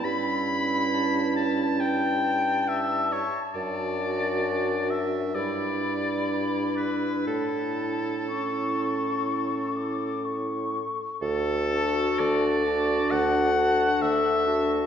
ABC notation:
X:1
M:4/4
L:1/8
Q:1/4=66
K:D
V:1 name="Flute"
b2 a6- | a3 z b4 | a2 c'3 d' c'2 | z a2 a2 a2 a |]
V:2 name="Oboe"
b3 a g2 e c | d3 e d3 B | A6 z2 | A2 d2 f2 e2 |]
V:3 name="Clarinet"
E6- E z | F4 E4- | E6- E z | z F2 F2 F2 F |]
V:4 name="French horn"
C6- C z | D8- | D2 C4- C z | z D2 D2 D2 D |]
V:5 name="Bassoon" clef=bass
G,,6- G,, z | F,,4 G,,4 | A,,6- A,, z | D,,2 D,,2 D,,2 D,,2 |]